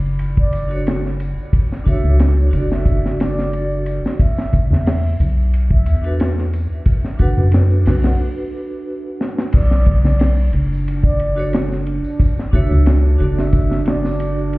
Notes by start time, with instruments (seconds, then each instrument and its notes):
Already playing: analog synth bass F#1
0.06 tambourine
0.19 ride, tambourine
0.37 flute D5, kick
0.53 ride, tambourine
0.68 vibraphone D4 F#4 A4, ride
0.72 vibraphone C#5, tambourine
0.87 snare, ride, tambourine
1.06 snare, tambourine
1.20 ride, tambourine
1.38 tambourine
1.53 kick, ride, tambourine
1.72 snare, tambourine
1.84 vibraphone D4 F#4 A4, flute E5, kick, ride, tambourine, low conga
1.89 vibraphone C#5
2.04 analog synth bass C#2, tambourine, low conga
2.19 snare, ride, tambourine
2.38 tambourine
2.48 vibraphone D4 F#4
2.53 analog synth bass F#1, vibraphone A4 D5, ride, tambourine, low conga
2.70 flute E5, snare, tambourine
2.86 kick, ride, tambourine
3.06 snare
3.20 flute D5, snare, ride, tambourine
3.38 snare, tambourine
3.53 ride, tambourine
3.71 tambourine
3.86 ride, tambourine
4.04 snare, tambourine
4.19 flute E5, kick, ride, tambourine
4.37 snare, tambourine
4.53 kick, ride, tambourine, low conga
4.71 analog synth bass E2, flute E5, snare, tambourine, low conga
4.86 snare, open hi-hat, tambourine
5.04 tambourine
5.19 analog synth bass B1, ride, tambourine, low conga
5.39 tambourine
5.54 ride, tambourine
5.71 flute E5, kick
5.86 analog synth bass E2, ride, tambourine
6.02 vibraphone D4 F#4 A4, ride, tambourine
6.06 vibraphone B4
6.20 snare, ride, tambourine
6.38 snare, tambourine
6.53 ride, tambourine
6.73 tambourine
6.86 kick, ride, tambourine
7.04 snare, tambourine
7.17 vibraphone D4 F#4 A4, flute F#5, kick, ride, tambourine, low conga
7.22 vibraphone B4
7.37 analog synth bass F#2, tambourine, low conga
7.52 snare, ride, tambourine
7.70 tambourine
7.82 vibraphone D4 F#4
7.86 analog synth bass B1, vibraphone A4, snare, open hi-hat, tambourine, low conga
7.90 vibraphone B4
8.03 flute F#5, snare, open hi-hat, tambourine
9.21 snare
9.38 snare
9.52 analog synth bass B1, ambient pad D4, flute D5, kick, crash, ride, tambourine
9.71 snare, tambourine
9.86 kick, ride, low conga
10.04 flute D5, snare, tambourine, low conga
10.19 snare, open hi-hat, tambourine
10.39 tambourine
10.53 analog synth bass F#1, ride, low conga
10.72 tambourine
10.88 ride, tambourine
11.04 flute D5, kick, tambourine
11.20 ride
11.35 vibraphone D4 F#4 A4, ride, tambourine
11.39 vibraphone C#5
11.53 snare, ride, tambourine
11.72 snare, tambourine
11.87 ride
12.04 tambourine
12.20 kick, ride, tambourine
12.38 snare, tambourine
12.51 vibraphone D4 F#4 A4, flute E5, kick, ride, low conga
12.56 vibraphone C#5
12.71 analog synth bass C#2, tambourine, low conga
12.86 snare, ride, tambourine
13.06 tambourine
13.15 vibraphone D4 F#4
13.20 analog synth bass F#1, vibraphone A4, ride, low conga
13.24 vibraphone D5
13.38 flute E5, snare, tambourine
13.53 kick, ride, tambourine
13.71 snare, tambourine
13.86 flute D5, snare, ride
14.05 snare, tambourine
14.20 ride, tambourine
14.38 tambourine
14.53 ride